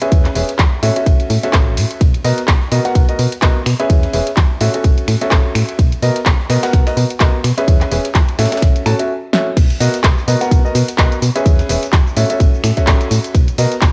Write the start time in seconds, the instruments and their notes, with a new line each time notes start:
0.02 grand piano C#4 G#4 B4 E5, closed hi-hat
0.12 fm bass E2, kick, closed hi-hat, ride
0.25 snare, clap, closed hi-hat
0.35 fm bass E1, grand piano C#4 G#4 B4 E5, open hi-hat, ride
0.49 snare, closed hi-hat
0.59 fm bass E2, kick, snare, clap, closed hi-hat, ride
0.83 fm bass A2, grand piano C#4 F#4 A4 E5, open hi-hat, ride
0.96 grand piano C#4 F#4 A4 E5, closed hi-hat
1.06 fm bass A1, kick, closed hi-hat, ride
1.20 closed hi-hat
1.30 fm bass A2, open hi-hat, ride
1.43 grand piano C#4 F#4 A4 E5, snare, closed hi-hat
1.53 fm bass A1, kick, snare, clap, closed hi-hat, ride
1.77 fm bass A2, open hi-hat, ride
1.91 closed hi-hat
2.01 fm bass B1, kick, closed hi-hat, ride
2.14 closed hi-hat
2.24 fm bass B2, grand piano B3 F#4 A#4 D#5, open hi-hat, ride
2.38 snare, closed hi-hat
2.48 fm bass B1, kick, snare, clap, closed hi-hat, ride
2.61 snare
2.72 fm bass B2, grand piano B3 F#4 A#4 D#5, open hi-hat, ride
2.85 grand piano B3 F#4 A#4 F#5, closed hi-hat
2.95 fm bass B1, kick, closed hi-hat, ride
3.09 grand piano B3 F#4 A#4 D#5, closed hi-hat
3.19 fm bass B2, open hi-hat, ride
3.32 closed hi-hat, ride
3.42 fm bass B1, grand piano B3 F#4 A#4 D#5, kick, snare, clap, closed hi-hat, ride
3.66 fm bass B2, finger snap, snare, open hi-hat, ride
3.80 grand piano C#4 G#4 B4 E5, closed hi-hat
3.90 fm bass E2, kick, closed hi-hat, ride
4.03 snare, closed hi-hat
4.13 fm bass E1, grand piano C#4 G#4 B4 E5, open hi-hat, ride
4.27 snare, closed hi-hat
4.37 fm bass E2, kick, snare, clap, closed hi-hat, ride
4.61 fm bass A2, grand piano C#4 F#4 A4 E5, open hi-hat, ride
4.74 grand piano C#4 F#4 A4 E5, closed hi-hat
4.84 fm bass A1, kick, closed hi-hat, ride
4.98 closed hi-hat
5.08 fm bass A2, finger snap, open hi-hat, ride
5.21 grand piano C#4 F#4 A4 E5, snare, closed hi-hat
5.31 fm bass A1, kick, snare, clap, closed hi-hat, ride
5.55 fm bass A2, finger snap, open hi-hat, ride
5.69 closed hi-hat
5.79 fm bass B1, kick, closed hi-hat, ride
5.92 closed hi-hat
6.02 fm bass B2, grand piano B3 F#4 A#4 D#5, open hi-hat, ride
6.16 snare, closed hi-hat
6.26 fm bass B1, kick, snare, clap, closed hi-hat, ride
6.39 snare
6.50 fm bass B2, grand piano B3 F#4 A#4 D#5, snare, open hi-hat, ride
6.63 grand piano B3 F#4 A#4 F#5, snare, closed hi-hat, ride
6.73 fm bass B1, kick, snare, closed hi-hat, ride
6.87 grand piano B3 F#4 A#4 D#5, snare, closed hi-hat, ride
6.97 fm bass B2, open hi-hat, ride
7.10 closed hi-hat, ride
7.20 fm bass B1, grand piano B3 F#4 A#4 D#5, kick, snare, clap, closed hi-hat, ride
7.44 fm bass B2, finger snap, snare, open hi-hat, ride
7.58 grand piano C#4 G#4 B4 E5, closed hi-hat
7.68 fm bass E2, kick, closed hi-hat, ride
7.81 snare, clap, closed hi-hat
7.91 fm bass E1, grand piano C#4 G#4 B4 E5, open hi-hat, ride
8.05 snare, closed hi-hat
8.15 fm bass E2, kick, snare, clap, closed hi-hat, ride
8.29 closed hi-hat
8.39 fm bass A2, grand piano C#4 F#4 A4 E5, snare, open hi-hat, ride
8.45 snare, ride
8.52 grand piano C#4 F#4 A4 E5, snare, closed hi-hat, ride
8.57 snare, ride
8.62 fm bass A1, kick, snare, closed hi-hat, ride
8.76 closed hi-hat
8.86 fm bass A2, grand piano C#4 F#4 A4 A5, finger snap, open hi-hat
8.99 grand piano C#4 F#4 A4 E5, closed hi-hat
9.33 grand piano C#4 F#4 A4 E5, snare
9.57 fm bass B1, kick, closed hi-hat, crash, ride, shaker
9.70 closed hi-hat, shaker
9.80 fm bass B2, grand piano B3 F#4 A#4 D#5, open hi-hat, ride, shaker
9.94 snare, closed hi-hat, shaker
10.04 fm bass B1, kick, snare, clap, closed hi-hat, ride, shaker
10.17 snare, shaker
10.28 fm bass B2, grand piano B3 F#4 A#4 D#5, open hi-hat, ride, shaker
10.41 grand piano B3 F#4 A#4 F#5, closed hi-hat, shaker
10.51 fm bass B1, kick, closed hi-hat, ride, shaker
10.65 grand piano B3 F#4 A#4 D#5, shaker
10.75 fm bass B2, open hi-hat, ride, shaker
10.88 closed hi-hat, ride, shaker
10.98 fm bass B1, grand piano B3 F#4 A#4 D#5, kick, snare, clap, closed hi-hat, ride, shaker
11.12 closed hi-hat, shaker
11.22 fm bass B2, snare, open hi-hat, ride, shaker
11.36 grand piano C#4 G#4 B4 E5, closed hi-hat, shaker
11.46 fm bass E2, kick, closed hi-hat, ride, shaker
11.59 snare, closed hi-hat, shaker
11.69 fm bass E1, grand piano C#4 G#4 B4 E5, open hi-hat, ride, shaker
11.83 snare, closed hi-hat, shaker
11.93 fm bass E2, kick, snare, clap, closed hi-hat, ride, shaker
12.07 shaker
12.17 fm bass A2, grand piano C#4 F#4 A4 E5, open hi-hat, ride, shaker
12.30 grand piano C#4 F#4 A4 E5, closed hi-hat, shaker
12.40 fm bass A1, kick, closed hi-hat, ride, shaker
12.54 shaker
12.64 fm bass A2, finger snap, open hi-hat, ride, shaker
12.77 grand piano C#4 F#4 A4 E5, kick, snare, closed hi-hat, shaker
12.87 fm bass A1, kick, snare, clap, closed hi-hat, ride, shaker
13.01 closed hi-hat, shaker
13.11 fm bass A2, open hi-hat, ride, shaker
13.24 closed hi-hat, shaker
13.35 fm bass B1, kick, closed hi-hat, ride, shaker
13.48 closed hi-hat, shaker
13.58 fm bass B2, grand piano B3 F#4 A#4 D#5, open hi-hat, ride, shaker
13.72 snare, closed hi-hat, shaker
13.81 fm bass B1, kick, snare, clap, closed hi-hat, ride, shaker